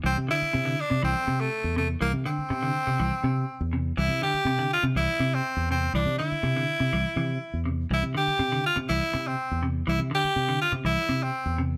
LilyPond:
<<
  \new Staff \with { instrumentName = "Tenor saxophone" } { \time 4/4 \key c \major \tempo 4 = 122 c'8 e'4 d'8 c'8. a8. a8 | bes8 c'2. r8 | e'8 g'4 f'8 e'8. c'8. c'8 | d'8 e'2. r8 |
e'8 g'4 f'8 e'8. c'8. r8 | e'8 g'4 f'8 e'8. c'8. r8 | }
  \new Staff \with { instrumentName = "Clean electric guitar" } { \clef bass \time 4/4 \key c \major e8 d8 c16 d8 c16 e8 c8 r8 c8 | e8 d8 c16 d8 c16 e8 c8 r8 c8 | e8 d8 c16 d8 c16 e8 c8 r8 c8 | e8 d8 c16 d8 c16 e8 e8 r8 c8 |
e8 d8 c16 d8 c16 e8 c8 r8 c8 | e8 d8 r16 d8 c16 e8 c8 r8 c8 | }
  \new Staff \with { instrumentName = "Fingered electric bass" } { \clef bass \time 4/4 \key c \major c,16 c16 r8 c8 r16 c16 c,16 r16 c8 r16 e,8. | c,16 c16 r8 c8 r16 c16 c,16 r16 c8 r16 e,8. | c,16 c16 r8 c8 r16 c16 c,16 r16 c8 r16 e,8. | c,16 c16 r8 c8 r16 c16 c,16 r16 c8 r16 e,8. |
c,16 c16 r8 c8 r16 c16 c,16 r16 c8 r16 e,8. | c,16 c16 r8 c8 r16 c16 c,16 r16 c8 r16 e,8. | }
>>